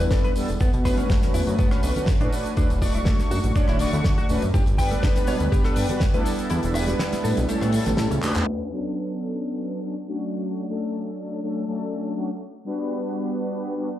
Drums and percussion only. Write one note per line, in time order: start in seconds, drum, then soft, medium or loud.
0.00 cabasa soft
0.11 kick loud
0.11 snare loud
0.11 closed hi-hat medium
0.11 tambourine medium
0.11 cabasa medium
0.24 closed hi-hat medium
0.36 open hi-hat loud
0.36 tambourine medium
0.36 cabasa medium
0.49 closed hi-hat soft
0.49 tambourine soft
0.49 cabasa soft
0.60 kick loud
0.60 closed hi-hat medium
0.60 tambourine soft
0.60 high bongo medium
0.60 cabasa medium
0.73 closed hi-hat soft
0.73 tambourine soft
0.85 kick medium
0.85 cross-stick medium
0.85 open hi-hat loud
0.85 tambourine medium
0.85 high bongo medium
0.85 cabasa medium
0.97 closed hi-hat soft
0.97 tambourine soft
0.97 high conga medium
0.97 cabasa soft
1.10 kick loud
1.10 snare loud
1.10 closed hi-hat medium
1.10 tambourine medium
1.10 cabasa medium
1.22 snare soft
1.22 closed hi-hat soft
1.22 high conga medium
1.22 cabasa soft
1.34 open hi-hat loud
1.34 tambourine medium
1.34 cabasa medium
1.47 closed hi-hat medium
1.47 tambourine soft
1.47 high conga medium
1.47 cabasa medium
1.59 kick loud
1.59 closed hi-hat medium
1.59 tambourine soft
1.59 cabasa medium
1.71 cross-stick medium
1.71 closed hi-hat soft
1.71 tambourine soft
1.83 open hi-hat loud
1.83 tambourine loud
1.83 cabasa medium
1.96 closed hi-hat medium
1.96 tambourine soft
1.96 high bongo medium
1.96 low conga medium
1.96 cabasa soft
2.06 kick loud
2.06 snare loud
2.06 closed hi-hat medium
2.06 tambourine medium
2.06 cabasa medium
2.21 closed hi-hat soft
2.32 open hi-hat medium
2.32 tambourine medium
2.32 cabasa medium
2.45 closed hi-hat medium
2.45 tambourine soft
2.45 cabasa medium
2.57 kick loud
2.57 closed hi-hat medium
2.57 tambourine medium
2.57 high bongo medium
2.57 cabasa medium
2.70 closed hi-hat medium
2.70 tambourine soft
2.70 cabasa soft
2.82 kick medium
2.82 open hi-hat loud
2.82 tambourine medium
2.82 high bongo medium
2.82 cabasa medium
2.95 closed hi-hat medium
2.95 tambourine soft
2.95 high conga medium
2.95 cabasa soft
3.05 kick loud
3.05 snare loud
3.05 closed hi-hat medium
3.05 tambourine medium
3.05 cabasa medium
3.19 snare soft
3.19 closed hi-hat soft
3.19 high conga medium
3.19 cabasa medium
3.31 open hi-hat medium
3.31 tambourine loud
3.31 cabasa medium
3.43 closed hi-hat medium
3.43 tambourine soft
3.43 high bongo soft
3.43 high conga medium
3.43 cabasa soft
3.55 kick loud
3.55 closed hi-hat medium
3.55 tambourine medium
3.55 cabasa medium
3.68 cross-stick medium
3.68 closed hi-hat medium
3.68 tambourine soft
3.79 open hi-hat loud
3.79 tambourine medium
3.79 cabasa medium
3.92 closed hi-hat medium
3.92 tambourine soft
3.92 low conga medium
3.92 cabasa medium
4.04 kick loud
4.04 snare loud
4.04 closed hi-hat medium
4.04 tambourine medium
4.04 cabasa medium
4.18 closed hi-hat soft
4.29 open hi-hat medium
4.29 tambourine medium
4.29 cabasa medium
4.42 closed hi-hat medium
4.42 tambourine soft
4.42 cabasa soft
4.54 kick loud
4.54 closed hi-hat medium
4.54 tambourine soft
4.54 high bongo medium
4.54 cabasa medium
4.66 closed hi-hat medium
4.66 tambourine soft
4.79 kick medium
4.79 cross-stick medium
4.79 open hi-hat loud
4.79 tambourine medium
4.79 high bongo medium
4.79 cabasa medium
4.91 closed hi-hat medium
4.91 tambourine soft
4.91 high conga medium
4.91 cabasa soft
5.03 kick loud
5.03 snare loud
5.03 closed hi-hat medium
5.03 tambourine medium
5.03 cabasa medium
5.15 snare soft
5.15 closed hi-hat medium
5.15 high conga medium
5.15 cabasa medium
5.27 open hi-hat medium
5.27 tambourine medium
5.27 cabasa medium
5.40 closed hi-hat medium
5.40 tambourine soft
5.40 high conga medium
5.40 cabasa medium
5.52 kick loud
5.52 closed hi-hat medium
5.52 tambourine medium
5.52 cabasa medium
5.64 cross-stick medium
5.64 closed hi-hat medium
5.64 tambourine soft
5.76 open hi-hat loud
5.76 tambourine medium
5.76 cabasa medium
5.89 closed hi-hat medium
5.89 tambourine soft
5.89 high bongo medium
5.89 low conga medium
5.89 cabasa soft
6.00 kick loud
6.00 snare loud
6.00 closed hi-hat medium
6.00 tambourine medium
6.00 cabasa medium
6.14 closed hi-hat medium
6.25 open hi-hat medium
6.25 tambourine medium
6.25 cabasa medium
6.38 closed hi-hat medium
6.38 tambourine soft
6.38 cabasa soft
6.50 closed hi-hat medium
6.50 tambourine soft
6.50 high bongo medium
6.50 cabasa medium
6.63 closed hi-hat medium
6.63 tambourine soft
6.63 cabasa medium
6.74 cross-stick medium
6.74 open hi-hat loud
6.74 tambourine medium
6.74 high bongo medium
6.74 cabasa medium
6.88 closed hi-hat medium
6.88 tambourine soft
6.88 high conga medium
6.88 cabasa medium
6.99 snare loud
6.99 closed hi-hat medium
6.99 tambourine medium
6.99 cabasa medium
7.12 snare soft
7.12 closed hi-hat medium
7.12 tambourine soft
7.12 high conga medium
7.12 cabasa soft
7.24 open hi-hat medium
7.24 tambourine medium
7.24 cabasa medium
7.37 closed hi-hat medium
7.37 tambourine soft
7.37 high bongo soft
7.37 high conga medium
7.37 cabasa soft
7.48 closed hi-hat medium
7.48 tambourine medium
7.48 cabasa medium
7.61 cross-stick medium
7.61 closed hi-hat medium
7.61 tambourine soft
7.61 cabasa soft
7.72 open hi-hat loud
7.72 tambourine loud
7.72 cabasa medium
7.86 cross-stick medium
7.86 closed hi-hat medium
7.86 tambourine soft
7.86 low conga medium
7.86 cabasa soft
7.97 snare loud
7.97 closed hi-hat medium
7.97 tambourine medium
7.97 cabasa medium
8.11 closed hi-hat medium
8.11 tambourine soft
8.11 cabasa soft
8.23 clap medium
8.23 open hi-hat medium
8.23 tambourine medium
8.23 cabasa medium
8.35 clap medium
8.35 closed hi-hat medium
8.35 tambourine soft
8.35 cabasa soft